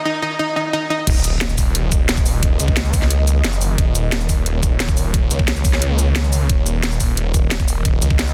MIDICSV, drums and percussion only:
0, 0, Header, 1, 2, 480
1, 0, Start_track
1, 0, Tempo, 338983
1, 1517, Time_signature, 4, 2, 24, 8
1, 11804, End_track
2, 0, Start_track
2, 0, Title_t, "Drums"
2, 1517, Note_on_c, 9, 36, 115
2, 1517, Note_on_c, 9, 42, 95
2, 1517, Note_on_c, 9, 49, 101
2, 1658, Note_off_c, 9, 36, 0
2, 1658, Note_off_c, 9, 42, 0
2, 1658, Note_off_c, 9, 49, 0
2, 1757, Note_on_c, 9, 42, 73
2, 1757, Note_on_c, 9, 82, 64
2, 1899, Note_off_c, 9, 42, 0
2, 1899, Note_off_c, 9, 82, 0
2, 1997, Note_on_c, 9, 38, 123
2, 1997, Note_on_c, 9, 42, 92
2, 2117, Note_on_c, 9, 82, 29
2, 2138, Note_off_c, 9, 38, 0
2, 2138, Note_off_c, 9, 42, 0
2, 2236, Note_on_c, 9, 36, 60
2, 2237, Note_off_c, 9, 82, 0
2, 2237, Note_on_c, 9, 46, 80
2, 2237, Note_on_c, 9, 82, 63
2, 2378, Note_off_c, 9, 36, 0
2, 2379, Note_off_c, 9, 46, 0
2, 2379, Note_off_c, 9, 82, 0
2, 2477, Note_on_c, 9, 42, 103
2, 2618, Note_off_c, 9, 42, 0
2, 2716, Note_on_c, 9, 36, 109
2, 2717, Note_on_c, 9, 42, 64
2, 2717, Note_on_c, 9, 82, 62
2, 2858, Note_off_c, 9, 36, 0
2, 2859, Note_off_c, 9, 42, 0
2, 2859, Note_off_c, 9, 82, 0
2, 2956, Note_on_c, 9, 38, 121
2, 2956, Note_on_c, 9, 42, 93
2, 3077, Note_on_c, 9, 36, 114
2, 3077, Note_on_c, 9, 82, 29
2, 3098, Note_off_c, 9, 38, 0
2, 3098, Note_off_c, 9, 42, 0
2, 3197, Note_off_c, 9, 82, 0
2, 3197, Note_on_c, 9, 46, 84
2, 3197, Note_on_c, 9, 82, 66
2, 3218, Note_off_c, 9, 36, 0
2, 3339, Note_off_c, 9, 46, 0
2, 3339, Note_off_c, 9, 82, 0
2, 3436, Note_on_c, 9, 36, 126
2, 3436, Note_on_c, 9, 42, 96
2, 3578, Note_off_c, 9, 36, 0
2, 3578, Note_off_c, 9, 42, 0
2, 3677, Note_on_c, 9, 42, 71
2, 3677, Note_on_c, 9, 82, 62
2, 3796, Note_on_c, 9, 36, 113
2, 3818, Note_off_c, 9, 42, 0
2, 3818, Note_off_c, 9, 82, 0
2, 3917, Note_on_c, 9, 38, 124
2, 3917, Note_on_c, 9, 42, 95
2, 3938, Note_off_c, 9, 36, 0
2, 4037, Note_on_c, 9, 82, 28
2, 4058, Note_off_c, 9, 38, 0
2, 4058, Note_off_c, 9, 42, 0
2, 4156, Note_on_c, 9, 36, 108
2, 4157, Note_off_c, 9, 82, 0
2, 4157, Note_on_c, 9, 46, 78
2, 4157, Note_on_c, 9, 82, 58
2, 4277, Note_on_c, 9, 38, 41
2, 4298, Note_off_c, 9, 36, 0
2, 4298, Note_off_c, 9, 46, 0
2, 4298, Note_off_c, 9, 82, 0
2, 4397, Note_on_c, 9, 42, 98
2, 4418, Note_off_c, 9, 38, 0
2, 4538, Note_off_c, 9, 42, 0
2, 4637, Note_on_c, 9, 42, 63
2, 4637, Note_on_c, 9, 82, 58
2, 4778, Note_off_c, 9, 42, 0
2, 4778, Note_off_c, 9, 82, 0
2, 4877, Note_on_c, 9, 38, 117
2, 4877, Note_on_c, 9, 42, 93
2, 4997, Note_on_c, 9, 82, 29
2, 5019, Note_off_c, 9, 38, 0
2, 5019, Note_off_c, 9, 42, 0
2, 5117, Note_off_c, 9, 82, 0
2, 5117, Note_on_c, 9, 46, 78
2, 5117, Note_on_c, 9, 82, 66
2, 5259, Note_off_c, 9, 46, 0
2, 5259, Note_off_c, 9, 82, 0
2, 5356, Note_on_c, 9, 36, 125
2, 5357, Note_on_c, 9, 42, 91
2, 5498, Note_off_c, 9, 36, 0
2, 5499, Note_off_c, 9, 42, 0
2, 5597, Note_on_c, 9, 42, 71
2, 5597, Note_on_c, 9, 82, 61
2, 5738, Note_off_c, 9, 42, 0
2, 5738, Note_off_c, 9, 82, 0
2, 5837, Note_on_c, 9, 38, 121
2, 5837, Note_on_c, 9, 42, 96
2, 5957, Note_on_c, 9, 82, 26
2, 5978, Note_off_c, 9, 38, 0
2, 5978, Note_off_c, 9, 42, 0
2, 6076, Note_on_c, 9, 36, 67
2, 6078, Note_off_c, 9, 82, 0
2, 6078, Note_on_c, 9, 46, 77
2, 6078, Note_on_c, 9, 82, 60
2, 6218, Note_off_c, 9, 36, 0
2, 6219, Note_off_c, 9, 46, 0
2, 6219, Note_off_c, 9, 82, 0
2, 6317, Note_on_c, 9, 42, 96
2, 6459, Note_off_c, 9, 42, 0
2, 6557, Note_on_c, 9, 36, 109
2, 6557, Note_on_c, 9, 42, 67
2, 6557, Note_on_c, 9, 82, 56
2, 6698, Note_off_c, 9, 36, 0
2, 6699, Note_off_c, 9, 42, 0
2, 6699, Note_off_c, 9, 82, 0
2, 6798, Note_on_c, 9, 38, 112
2, 6798, Note_on_c, 9, 42, 89
2, 6916, Note_on_c, 9, 36, 114
2, 6917, Note_on_c, 9, 82, 28
2, 6939, Note_off_c, 9, 38, 0
2, 6939, Note_off_c, 9, 42, 0
2, 7037, Note_off_c, 9, 82, 0
2, 7037, Note_on_c, 9, 46, 78
2, 7037, Note_on_c, 9, 82, 61
2, 7058, Note_off_c, 9, 36, 0
2, 7178, Note_off_c, 9, 46, 0
2, 7178, Note_off_c, 9, 82, 0
2, 7276, Note_on_c, 9, 36, 121
2, 7277, Note_on_c, 9, 42, 87
2, 7418, Note_off_c, 9, 36, 0
2, 7418, Note_off_c, 9, 42, 0
2, 7517, Note_on_c, 9, 42, 68
2, 7517, Note_on_c, 9, 82, 57
2, 7636, Note_on_c, 9, 36, 113
2, 7659, Note_off_c, 9, 42, 0
2, 7659, Note_off_c, 9, 82, 0
2, 7757, Note_on_c, 9, 38, 122
2, 7757, Note_on_c, 9, 42, 91
2, 7778, Note_off_c, 9, 36, 0
2, 7878, Note_on_c, 9, 82, 26
2, 7899, Note_off_c, 9, 38, 0
2, 7899, Note_off_c, 9, 42, 0
2, 7997, Note_on_c, 9, 36, 114
2, 7998, Note_off_c, 9, 82, 0
2, 7998, Note_on_c, 9, 46, 78
2, 7998, Note_on_c, 9, 82, 58
2, 8118, Note_on_c, 9, 38, 39
2, 8138, Note_off_c, 9, 36, 0
2, 8139, Note_off_c, 9, 46, 0
2, 8139, Note_off_c, 9, 82, 0
2, 8238, Note_on_c, 9, 42, 91
2, 8259, Note_off_c, 9, 38, 0
2, 8379, Note_off_c, 9, 42, 0
2, 8478, Note_on_c, 9, 42, 64
2, 8478, Note_on_c, 9, 82, 54
2, 8619, Note_off_c, 9, 42, 0
2, 8619, Note_off_c, 9, 82, 0
2, 8717, Note_on_c, 9, 38, 118
2, 8717, Note_on_c, 9, 42, 85
2, 8838, Note_on_c, 9, 82, 26
2, 8859, Note_off_c, 9, 38, 0
2, 8859, Note_off_c, 9, 42, 0
2, 8957, Note_off_c, 9, 82, 0
2, 8957, Note_on_c, 9, 46, 78
2, 8957, Note_on_c, 9, 82, 61
2, 9099, Note_off_c, 9, 46, 0
2, 9099, Note_off_c, 9, 82, 0
2, 9196, Note_on_c, 9, 36, 117
2, 9196, Note_on_c, 9, 42, 92
2, 9338, Note_off_c, 9, 36, 0
2, 9338, Note_off_c, 9, 42, 0
2, 9437, Note_on_c, 9, 42, 66
2, 9437, Note_on_c, 9, 82, 61
2, 9578, Note_off_c, 9, 42, 0
2, 9578, Note_off_c, 9, 82, 0
2, 9676, Note_on_c, 9, 38, 119
2, 9676, Note_on_c, 9, 42, 94
2, 9797, Note_on_c, 9, 82, 27
2, 9818, Note_off_c, 9, 38, 0
2, 9818, Note_off_c, 9, 42, 0
2, 9917, Note_off_c, 9, 82, 0
2, 9917, Note_on_c, 9, 36, 60
2, 9917, Note_on_c, 9, 46, 84
2, 9917, Note_on_c, 9, 82, 58
2, 10058, Note_off_c, 9, 36, 0
2, 10058, Note_off_c, 9, 46, 0
2, 10058, Note_off_c, 9, 82, 0
2, 10157, Note_on_c, 9, 42, 89
2, 10299, Note_off_c, 9, 42, 0
2, 10397, Note_on_c, 9, 36, 112
2, 10397, Note_on_c, 9, 42, 62
2, 10397, Note_on_c, 9, 82, 52
2, 10538, Note_off_c, 9, 36, 0
2, 10539, Note_off_c, 9, 42, 0
2, 10539, Note_off_c, 9, 82, 0
2, 10637, Note_on_c, 9, 38, 117
2, 10637, Note_on_c, 9, 42, 86
2, 10756, Note_on_c, 9, 36, 101
2, 10757, Note_on_c, 9, 82, 26
2, 10778, Note_off_c, 9, 38, 0
2, 10778, Note_off_c, 9, 42, 0
2, 10877, Note_off_c, 9, 82, 0
2, 10877, Note_on_c, 9, 46, 80
2, 10877, Note_on_c, 9, 82, 60
2, 10898, Note_off_c, 9, 36, 0
2, 11018, Note_off_c, 9, 46, 0
2, 11018, Note_off_c, 9, 82, 0
2, 11116, Note_on_c, 9, 36, 113
2, 11117, Note_on_c, 9, 42, 86
2, 11258, Note_off_c, 9, 36, 0
2, 11259, Note_off_c, 9, 42, 0
2, 11357, Note_on_c, 9, 42, 64
2, 11357, Note_on_c, 9, 82, 62
2, 11476, Note_on_c, 9, 36, 107
2, 11498, Note_off_c, 9, 42, 0
2, 11498, Note_off_c, 9, 82, 0
2, 11596, Note_on_c, 9, 38, 115
2, 11596, Note_on_c, 9, 42, 91
2, 11618, Note_off_c, 9, 36, 0
2, 11717, Note_on_c, 9, 82, 28
2, 11738, Note_off_c, 9, 38, 0
2, 11738, Note_off_c, 9, 42, 0
2, 11804, Note_off_c, 9, 82, 0
2, 11804, End_track
0, 0, End_of_file